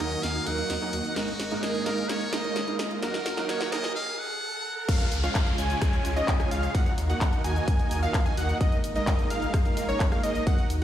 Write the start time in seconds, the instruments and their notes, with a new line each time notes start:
Already playing: analog synth pad D#3 D#4 F#4 A#4, riser
0.00 sub bass D#2, supersaw synth A#3 D#4 F#4 D#5 G#5, grand piano D#4 A#4, muted trumpet D#5, cross-stick, open hi-hat
0.12 closed hi-hat
0.23 sub bass D#2, muted trumpet F5, snare, closed hi-hat
0.35 closed hi-hat
0.46 sub bass D#2, grand piano F#3 A#3 D#4 A#4, muted trumpet F#5, open hi-hat
0.58 supersaw synth A#3 D#4 F#4 D#5 F5, closed hi-hat
0.70 sub bass D#2, snare, closed hi-hat
0.81 grand piano F#3 A#3 D#4 A#4, supersaw synth A#3 D#4 F#4 D#5 G#5, closed hi-hat
0.93 sub bass D#2, supersaw synth A#3 D#4 F#4 D#5 F#5, open hi-hat
1.05 closed hi-hat
1.16 sub bass G#1, grand piano G#2 G#3 A#3 D#4 A#4, supersaw synth G#3 A#3 D#4 A#4 D#5, analog synth pad G#3 A#3, muted trumpet F#4, snare, closed hi-hat
1.28 closed hi-hat
1.40 sub bass G#1, snare, open hi-hat
1.51 grand piano G#2 G#3 A#3 D#4 A#4, supersaw synth G#3 A#3 D#4 A#4 D#5, closed hi-hat
1.63 sub bass G#1, muted trumpet G#4, snare, closed hi-hat
1.75 closed hi-hat
1.86 sub bass G#1, grand piano G#2 G#3 A#3 D#4 A#4, supersaw synth G#3 A#3 D#4 A#4 F5, muted trumpet A#4, snare, open hi-hat
1.98 closed hi-hat
2.09 sub bass G#1, muted trumpet C#5, snare, closed hi-hat
2.21 closed hi-hat
2.32 sub bass G#1, grand piano G#2 G#3 A#3 D#4 A#4, muted trumpet D#5, snare, open hi-hat
2.44 supersaw synth G#3 A#3 D#4 A#4 C#5, closed hi-hat
2.56 sub bass G#1, snare, closed hi-hat
2.67 grand piano G#2 G#3 A#3 D#4 A#4, supersaw synth G#3 A#3 D#4 A#4 F5, closed hi-hat
2.79 sub bass G#1, supersaw synth G#3 A#3 D#4 A#4 D#5, snare, open hi-hat
2.91 closed hi-hat
3.02 sub bass D#2, analog synth pad D#3 F#4 A#4, grand piano F#3 A#3 D#4 A#4, supersaw synth A#3 D#4 F#4 D#5 F#5, muted trumpet A#4, snare, closed hi-hat
3.14 snare, closed hi-hat
3.26 sub bass D#2, snare, open hi-hat
3.37 grand piano F#3 A#3 D#4 A#4, supersaw synth A#3 D#4 F#4 D#5 F#5, snare, closed hi-hat
3.49 sub bass D#2, muted trumpet C#5, snare, closed hi-hat
3.61 snare, closed hi-hat
3.72 sub bass D#2, grand piano F#3 A#3 D#4 A#4, supersaw synth A#3 D#4 F#4 D#5 G#5, muted trumpet D#5, snare, open hi-hat
3.84 snare, closed hi-hat
3.95 muted trumpet F5
4.19 muted trumpet F#5
4.88 sub bass C#2, analog synth pad C#3 C#4 F4 G#4, supersaw synth G#3 C#4 F4 C#5 F5, analog synth lead F5, kick, closed hi-hat, crash, ride, downlifter, cabasa
5.00 closed hi-hat, cabasa
5.12 sub bass C#2, open hi-hat, cabasa
5.23 supersaw synth G#3 C#4 F4 C#5 F5, analog synth lead F5, closed hi-hat, cabasa
5.35 sub bass C#2, kick, clap, closed hi-hat, ride, cabasa
5.47 closed hi-hat, cabasa
5.58 sub bass C#2, supersaw synth G#3 C#4 F4 C#5 G#5, analog synth lead G#5, open hi-hat, cabasa
5.70 closed hi-hat, cabasa
5.82 sub bass C#2, kick, cross-stick, closed hi-hat, ride, cabasa
5.93 closed hi-hat, cabasa
6.05 sub bass C#2, open hi-hat, cabasa
6.16 supersaw synth G#3 C#4 F4 C#5 D#5, analog synth lead D#5, closed hi-hat, cabasa
6.28 sub bass C#2, kick, clap, closed hi-hat, ride, cabasa
6.40 supersaw synth G#3 C#4 F4 C#5 G#5, analog synth lead G#5, cross-stick, closed hi-hat, cabasa
6.51 sub bass C#2, supersaw synth G#3 C#4 F4 C#5 F5, analog synth lead F5, open hi-hat, cabasa
6.63 closed hi-hat, cabasa
6.75 sub bass D#2, analog synth pad D#3 D#4 F#4 A#4, supersaw synth A#3 D#4 F#4 D#5 F#5, analog synth lead F#5, kick, closed hi-hat, ride, cabasa
6.86 closed hi-hat, cabasa
6.98 sub bass D#2, open hi-hat, cabasa
7.09 supersaw synth A#3 D#4 F#4 D#5 F#5, analog synth lead F#5, closed hi-hat, cabasa
7.21 sub bass D#2, kick, clap, closed hi-hat, ride, cabasa
7.33 closed hi-hat, cabasa
7.44 sub bass D#2, supersaw synth A#3 D#4 F#4 D#5 G#5, analog synth lead G#5, open hi-hat, cabasa
7.56 closed hi-hat, cabasa
7.68 sub bass D#2, kick, closed hi-hat, ride, cabasa
7.79 closed hi-hat, cabasa
7.91 sub bass D#2, open hi-hat, cabasa
8.03 supersaw synth A#3 D#4 F#4 D#5 F5, analog synth lead F5, closed hi-hat, cabasa
8.14 sub bass D#2, kick, clap, closed hi-hat, ride, cabasa
8.26 supersaw synth A#3 D#4 F#4 D#5 G#5, analog synth lead G#5, closed hi-hat, cabasa
8.37 sub bass D#2, supersaw synth A#3 D#4 F#4 D#5 F#5, analog synth lead F#5, open hi-hat, cabasa
8.49 closed hi-hat, cabasa
8.61 sub bass G#1, analog synth pad G#3 A#3, supersaw synth G#3 A#3 D#4 A#4 D#5, analog synth lead D#5, kick, closed hi-hat, ride, cabasa
8.72 closed hi-hat, cabasa
8.84 sub bass G#1, open hi-hat, cabasa
8.96 supersaw synth G#3 A#3 D#4 A#4 D#5, analog synth lead D#5, closed hi-hat, cabasa
9.07 sub bass G#1, kick, clap, closed hi-hat, ride, cabasa
9.19 closed hi-hat, cabasa
9.30 sub bass G#1, supersaw synth G#3 A#3 D#4 A#4 F5, analog synth lead F5, open hi-hat, cabasa
9.42 closed hi-hat, cabasa
9.54 sub bass G#1, kick, cross-stick, closed hi-hat, ride, cabasa
9.65 closed hi-hat, cabasa
9.77 sub bass G#1, open hi-hat, cabasa
9.89 supersaw synth G#3 A#3 D#4 A#4 C#5, analog synth lead C#5, closed hi-hat, cabasa
10.00 sub bass G#1, kick, clap, closed hi-hat, ride, cabasa
10.12 supersaw synth G#3 A#3 D#4 A#4 F5, analog synth lead F5, cross-stick, closed hi-hat, cabasa
10.23 sub bass G#1, supersaw synth G#3 A#3 D#4 A#4 D#5, analog synth lead D#5, open hi-hat, cabasa
10.35 closed hi-hat, cabasa
10.47 sub bass D#2, analog synth pad D#3 F#4 A#4, supersaw synth A#3 D#4 F#4 D#5 F#5, analog synth lead F#5, kick, closed hi-hat, ride, cabasa
10.58 closed hi-hat, cabasa
10.70 sub bass D#2, open hi-hat, cabasa